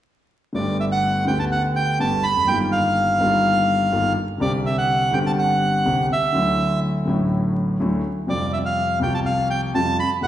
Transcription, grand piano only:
0.53 G1 G2 D3 A3 B3
0.57 G4
1.27 D2 D3 A3 B3 G4
2.00 G1 G2 D3 A3 B3 G4
2.30 E2
2.36 F2
2.43 F#2 G2
2.47 G1 D#3 G3 A#3 F4
3.19 G1 G2 D#3 G3 A#3
3.23 F4
3.92 G1 G2 D#3 G3 A#3 F4
4.38 C2 C3 D3 G3 C4
4.42 G4
5.11 G1 G2 D3 G3 C4
5.15 G4
5.85 C2 C3 D3 G3 C4 G4
6.34 D2 D3 F#3 A3 E4
7.05 A1 A2 D3 F#3 A3
7.10 E4
7.80 D2 D3 F#3 A3 E4
8.27 F2 C3 F3 G3 F4
9.00 C2 C3 F3 G3
9.04 F4
9.74 F2 C3 F3 G3 F4
10.21 A1 A2 C3 E3 A3

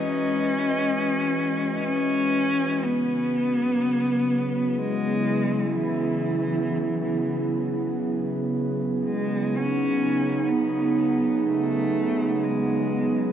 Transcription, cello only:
Already playing: C#4
1.85 C#4
2.83 B3
4.78 G#3
5.75 E3
9.06 G#3
9.55 C#4
10.49 B3
11.47 A3
12.43 G#3

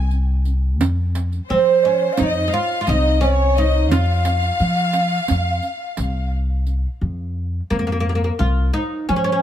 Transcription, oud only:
1.50 C4
1.85 C#4
2.18 D#4
2.48 D#4
2.54 F4
2.81 F4
2.89 D#4
3.21 C#4
3.58 D#4
3.92 F4
7.70 A#3
7.79 A#3
7.87 A#3
7.92 A#3
8.00 A#3
8.09 A#3
8.15 A#3
8.24 A#3
8.39 F4
8.73 D#4
9.09 C#4
9.16 C#4
9.24 C#4
9.32 C#4

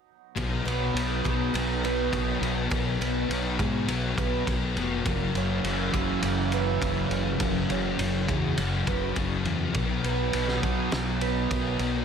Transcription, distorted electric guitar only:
0.35 B2 F#3 B3
0.66 F#3 B3
0.95 B2 F#3 B3
1.25 F#3 B3
1.54 B2 F#3 B3
1.83 F#3 B3
2.12 B2 F#3 B3
2.41 F#3 B3
2.71 B2 F#3 B3
3.00 F#3 B3
3.29 B2 F#3 B3
3.58 F#3 B3
3.86 B2 F#3 B3
4.16 F#3 B3
4.45 B2 F#3 B3
4.74 F#3 B3
5.04 F#2 C#3 F#3
5.34 C#3 F#3
5.63 F#2 C#3 F#3
5.92 C#3 F#3
6.21 F#2 C#3 F#3
6.51 C#3 F#3
6.80 F#2 C#3 F#3
7.08 C#3 F#3
7.39 F#2 C#3 F#3
7.68 C#3 F#3
7.98 F#2 C#3 F#3
8.27 C#3 F#3
8.57 F#2 C#3 F#3
8.86 C#3 F#3
9.15 F#2 C#3 F#3
9.44 C#3 F#3
9.73 B2 F#3 B3
10.03 F#3 B3
10.32 B2 F#3 B3
10.62 F#3 B3
10.92 B2 F#3 B3
11.21 F#3 B3
11.50 B2 F#3 B3
11.79 F#3 B3

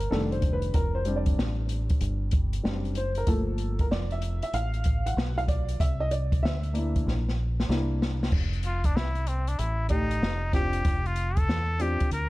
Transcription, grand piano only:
Already playing: A#4
0.11 D#3 G3 A3 D4 A4
0.32 C5
0.53 B4
0.74 A#4
0.95 C5
1.05 G3 C4 D4
1.16 D5
2.63 G3 C4 D4
2.97 C5
3.18 A#4
3.27 F3 A3 A#3 A4
3.81 A#4
3.91 D5
4.12 E5
4.43 E5
4.54 F5
5.06 F#5
5.38 F5
5.48 D5
5.80 E5
6.00 D#5
6.11 D5
6.43 E5
6.73 A#3 D4 E4
7.69 A#3 D4 E4
9.89 A3 D#4 G4 D5
10.53 C4 D4 F4 G4
11.79 C4 D4 F4 G4

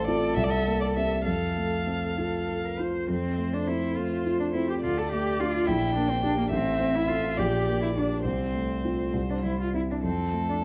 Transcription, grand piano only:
Already playing: A1 A3
0.07 C4 F4
0.36 C2
0.66 A#3
0.96 C4 G4
1.26 F2
1.57 A3
1.87 C4
2.18 F4
2.48 A4
2.79 F4
3.09 F2
3.38 A3
3.68 C4
3.97 A3
4.26 F4
4.55 C4
4.84 D2
5.12 A3
5.40 D4 F4
5.68 A#1
5.96 A#3
6.23 D4 G4
6.51 A1
6.80 C4
7.09 F4 A4
7.39 A#1
7.68 A#3
7.96 D4 G4
8.25 C2
8.54 A3
8.85 C4 F4
9.13 C2
9.44 G3
9.74 C4 E4
10.03 F2
10.33 A3

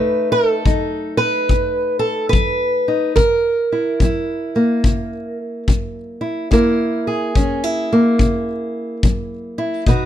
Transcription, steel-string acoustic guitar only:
Already playing: B2 A3 D#4 B4
0.32 A4
0.66 F#3 D#4
1.17 B4
1.50 F#2
1.99 A4
2.29 F#3 B4
2.88 D#4
3.16 F#2 A#4
3.72 E4
4.02 F#3 E4
4.56 A#3
4.86 C#3
5.68 F#3
6.21 E4
6.51 F#2 A#3 E4 A#4
7.07 G#4
7.36 F#3 C#4
7.64 E4
7.93 A#3
8.19 C#3
9.05 F#3
9.58 E4
9.87 B2 D#4 F#4 B4

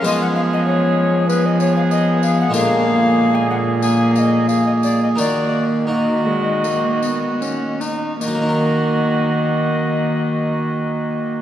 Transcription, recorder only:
0.05 D#5
0.22 F#5
0.35 F5
0.53 D#5
0.67 C#5
1.28 B4
1.46 D#5
1.61 C#5
1.76 F5
1.91 D#5
2.23 F5
2.40 F#5
2.54 F5
3.35 G#5
3.50 F#5
3.82 G#5
4.15 F5
4.19 D#5
4.48 F5
4.66 D#5
4.84 D5
5.03 D#5
5.19 D5
5.91 D#5
8.21 D#5

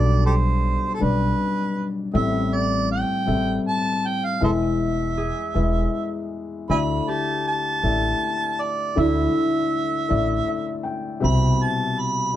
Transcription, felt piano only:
Already playing: B1 B2 G3 D4 G4 D5
0.99 G3 D4 B4 D5
2.13 A1 A2 G3 C4 A4 E5
3.26 G3 C4 A4 E5
4.41 E2 E3 G#3 E4 B4 E5
5.54 G#3 E4 B4 E5
6.69 D2 D3 A3 E4 D5 E5
7.83 A3 E4 D5 E5
8.95 D2 D3 A3 E4 D5 E5
10.09 A3 E4 D5 E5
10.48 E5
10.83 G5
11.20 C2 B2 C3 G4 C5 E5

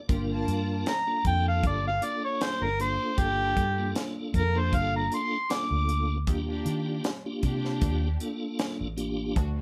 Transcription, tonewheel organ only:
0.09 A#3 D4 F4 A#4
1.07 A#3 D4 F4 A4
2.01 A#3 D4 F4 A4
2.80 A#3 D4 F4 A4
3.78 A#3 D4 F4 A4
4.55 A#3 D4 F4 A4
5.49 A#3 D4 F4 A4
6.27 A#3 D4 F4 G4
7.25 A#3 D4 F4 G4
8.20 A#3 D4 F4 A4
8.97 A#3 D4 F4 G4

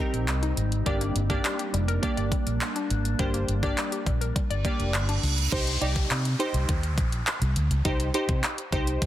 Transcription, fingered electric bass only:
0.13 A#1
0.28 C2
0.57 G#1
0.86 G1
1.15 G1
1.74 F1
2.18 G1
2.47 A#1
2.90 G#1
3.19 G1
3.49 G1
4.07 A#1
4.50 G1
4.79 F1
4.94 G1
5.23 C#2
5.81 C2
6.10 C3
6.54 C2
6.69 D#2
6.98 A#1
7.41 C2
7.56 D2
7.71 C#2
7.85 C2
8.29 C3
8.72 C2
9.02 muted fingered electric bass stroke

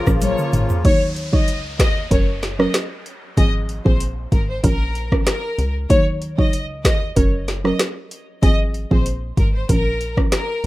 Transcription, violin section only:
0.22 C#5
0.85 C#5
1.33 D#5
1.80 D#5
2.11 C#5
2.59 D#5
3.38 D#5
3.86 C5
4.32 A#4
4.49 C5
4.63 A#4
5.27 A#4
5.90 C#5
6.38 D#5
6.85 D#5
7.16 C#5
7.65 D#5
8.43 D#5
8.91 C5
9.37 A#4
9.54 C5
9.69 A#4
10.32 A#4

